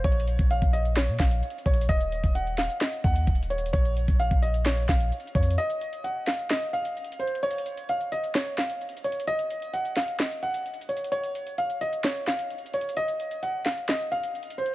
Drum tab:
HH |x-x-x-x--x--x--x--x--x--x--x--x--x--x-x-x-x-x-x-|x--x--x--x--x--x--o--x--x--x--x--x--x-x-x-x-x-x-|x--x--x--x--x--x--x--x--x--x--x--x--x-x-x-x-x-x-|x--x--x--x--x-----o--x--x--x--x--x--x-x-x-x-x-x-|
CP |------------------------x-----x-----------------|------------------x-----x-----------------------|------------------------x-----x-----------------|------------------x-----x-----------------------|
SD |------------------------o-----o-----------------|------------------o-----o-----------------------|------------------------o-----o-----------------|------------------o-----o-----------------------|
BD |o--------o-----o--------------o-----------o-----|o--------o--------------------o-----o-----------|o--------o-----o--------------o-----------o-----|------------------------------------------------|

HH |x-x-x-x--x--x--x--x--x--x--x--x--x--x-x-x-x-x-x-|x--x--x--x--x--x--o--x--x--x--x--x--x-x-x-x-x-x-|x--x--x--x--x--x--x--x--x--x--x--x--x-x-x-x-x-x-|x--x--x--x--x-----o--x--x--x--x--x--x-x-x-x-x---|
CP |------------------------x-----x-----------------|------------------x-----x-----------------------|------------------------x-----x-----------------|------------------x-----x-----------------------|
SD |------------------------o-----o-----------------|------------------o-----o-----------------------|------------------------o-----o-----------------|------------------o-----o-----------------------|
BD |------------------------------------------------|------------------------------------------------|------------------------------------------------|------------------------------------------------|